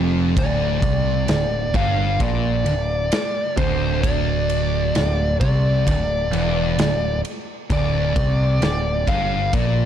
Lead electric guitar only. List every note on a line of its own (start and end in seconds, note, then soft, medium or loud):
0.39 1.76 D5 loud
1.76 2.22 F5 loud
2.22 3.57 D5 loud
3.57 4.01 C5 medium
4.02 5.36 D5 loud
5.40 7.20 D5 medium
7.73 9.13 D5 medium
9.09 9.55 F5 medium
9.54 9.85 D5 medium